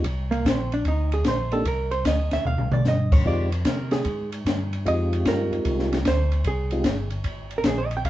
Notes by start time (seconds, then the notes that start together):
0.04 C2, kick, ride
0.31 A#3, ride
0.45 A#1 C4, kick, snare, hi-hat pedal, ride
0.72 D4, ride
0.84 D2 D#4, kick, ride
1.12 G#4, ride
1.24 A#1 C5, kick, snare, hi-hat pedal, ride
1.51 A#3 C4 D4 D#4 G4 A4, ride
1.65 C2 A#4, kick, ride
1.91 C5, ride
2.05 D2 D#5, kick, snare, hi-hat pedal, ride
2.31 D2 E5, snare, ride
2.44 D#2 F5, floor tom
2.58 C2, floor tom
2.71 A#1 D5, floor tom
2.84 G2, snare, hi-hat pedal
2.88 D#5
3.12 C#5, kick, crash
3.25 F2 G#3 C4 D#4 F4 G4 D5, kick
3.52 C5, ride
3.65 C3 A#4, kick, snare, hi-hat pedal, ride
3.91 G#4, snare, ride
4.05 G#2, kick, ride
4.32 ride
4.46 G2, kick, snare, hi-hat pedal, ride
4.73 ride
4.85 F2 G#3 C4 D#4 F4 G4 D#5, kick, ride
5.13 ride
5.25 G2 A#4, kick, snare, hi-hat pedal, ride
5.51 G2, ride
5.65 C2, kick, ride
5.79 snare
5.92 snare, ride
6.05 D2 C5, kick, snare, hi-hat pedal, ride
6.32 ride
6.44 C2 G#4, kick, ride
6.71 G#3 C4 D#4 F4 G4, ride
6.84 G1, kick, snare, hi-hat pedal, ride
7.10 ride
7.24 G#1, kick, ride
7.51 ride
7.58 A#4
7.63 A#1 G#4, kick, snare, hi-hat pedal, ride
7.78 C5
7.86 D#5
7.91 ride
7.97 G5
8.05 C2 F5, kick, ride